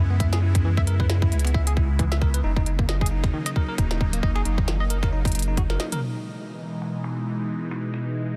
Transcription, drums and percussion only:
0.20 kick loud
0.20 closed hi-hat medium
0.33 snare loud
0.55 finger snap soft
0.55 kick loud
0.55 closed hi-hat medium
0.77 finger snap soft
0.77 kick loud
0.87 closed hi-hat soft
1.00 kick loud
1.10 snare loud
1.22 kick loud
1.32 closed hi-hat soft
1.39 closed hi-hat soft
1.45 finger snap medium
1.45 closed hi-hat medium
1.54 kick loud
1.67 closed hi-hat medium
1.77 kick loud
1.99 kick loud
1.99 closed hi-hat soft
2.12 snare loud
2.22 finger snap medium
2.22 kick loud
2.34 closed hi-hat medium
2.56 kick medium
2.66 closed hi-hat soft
2.79 kick loud
2.89 snare loud
3.01 kick loud
3.06 closed hi-hat medium
3.24 finger snap medium
3.24 kick loud
3.46 finger snap medium
3.46 closed hi-hat medium
3.56 kick loud
3.78 kick loud
3.78 closed hi-hat soft
3.91 snare loud
4.01 kick loud
4.13 finger snap medium
4.13 closed hi-hat medium
4.23 kick loud
4.36 finger snap soft
4.45 closed hi-hat medium
4.58 kick loud
4.68 snare loud
4.90 closed hi-hat medium
5.03 finger snap medium
5.03 kick loud
5.25 kick loud
5.25 closed hi-hat soft
5.28 closed hi-hat medium
5.32 closed hi-hat medium
5.35 closed hi-hat medium
5.39 closed hi-hat medium
5.42 closed hi-hat medium
5.57 kick loud
5.57 closed hi-hat medium
5.70 snare medium
5.80 snare medium
5.92 closed hi-hat medium
5.92 mid tom medium
6.82 finger snap medium
7.04 finger snap medium
7.71 finger snap soft
7.94 finger snap soft

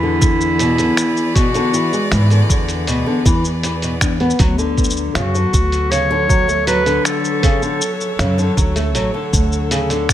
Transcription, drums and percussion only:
0.22 kick loud
0.22 shaker medium
0.41 shaker soft
0.59 open hi-hat medium
0.59 shaker soft
0.78 open hi-hat soft
0.78 shaker soft
0.97 finger snap medium
0.97 shaker medium
1.17 shaker soft
1.35 kick loud
1.35 open hi-hat medium
1.35 shaker soft
1.54 open hi-hat soft
1.54 shaker soft
1.74 shaker medium
1.93 shaker soft
2.12 finger snap medium
2.12 open hi-hat medium
2.12 shaker soft
2.30 open hi-hat soft
2.30 shaker soft
2.50 kick medium
2.50 shaker medium
2.68 open hi-hat soft
2.68 shaker soft
2.87 open hi-hat medium
2.87 shaker soft
3.26 kick loud
3.26 shaker medium
3.45 shaker soft
3.63 open hi-hat medium
3.63 shaker soft
3.82 open hi-hat soft
3.82 shaker soft
4.01 finger snap medium
4.01 kick medium
4.01 shaker medium
4.20 open hi-hat soft
4.30 shaker soft
4.39 kick loud
4.39 open hi-hat medium
4.39 shaker soft
4.59 shaker soft
4.78 kick medium
4.78 shaker soft
4.84 shaker soft
4.90 shaker medium
4.97 shaker soft
5.15 finger snap medium
5.15 open hi-hat medium
5.15 shaker soft
5.35 shaker soft
5.54 kick loud
5.54 shaker medium
5.72 open hi-hat soft
5.72 shaker soft
5.92 open hi-hat medium
5.92 shaker soft
6.29 kick loud
6.29 shaker medium
6.49 shaker soft
6.67 open hi-hat medium
6.67 shaker soft
6.86 open hi-hat soft
6.86 shaker soft
7.05 finger snap medium
7.05 shaker medium
7.25 shaker soft
7.43 kick loud
7.43 open hi-hat medium
7.43 shaker soft
7.62 shaker soft
7.81 shaker medium
8.01 shaker soft
8.19 finger snap medium
8.19 open hi-hat medium
8.19 shaker soft
8.39 shaker soft
8.57 kick medium
8.57 shaker medium
8.76 open hi-hat soft
8.76 shaker soft
8.95 open hi-hat medium
8.95 shaker soft
9.33 kick medium
9.33 shaker medium
9.52 shaker soft
9.71 open hi-hat medium
9.71 shaker soft
9.90 open hi-hat soft
9.90 shaker soft
10.09 finger snap medium
10.09 kick soft
10.09 shaker medium

